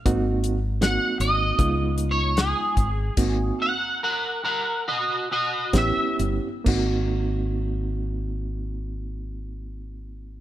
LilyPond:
<<
  \new Staff \with { instrumentName = "Clean electric guitar" } { \time 4/4 \key aes \mixolydian \tempo 4 = 69 << { r1 | r8 <bes' ges''>8 <bes' ges''>8 <bes' ges''>8 <ges' ees''>8 <ges' ees''>8 e''8 r8 | r1 | } \\ { r4 ges''8 ees''8~ \tuplet 3/2 { ees''8. r16 des''8 } aes'4~ | aes'2. r4 | r1 | } >> }
  \new Staff \with { instrumentName = "Reed electric piano" } { \time 4/4 \key aes \mixolydian <bes c' ees' ges'>8 r8 <bes c' ees' ges'>4 <aes ces' ees' f'>4. r8 | <bes c' ees' ges'>8 r2 r8 <b cis' e' g'>4 | <bes c' ees' ges'>1 | }
  \new Staff \with { instrumentName = "Fingered electric bass" } { \clef bass \time 4/4 \key aes \mixolydian aes,,4. aes,,8 des,4. aes,,8 | aes,,8 r2 r8 a,,16 r16 g,,16 r16 | aes,,1 | }
  \new DrumStaff \with { instrumentName = "Drums" } \drummode { \time 4/4 <hh bd>8 hh8 <hh sn>8 hh8 <hh bd>8 hh8 <hh sn>8 <hh bd>8 | <cymc hh bd>4 r4 r4 <hh bd sn>8 hh8 | <cymc bd>4 r4 r4 r4 | }
>>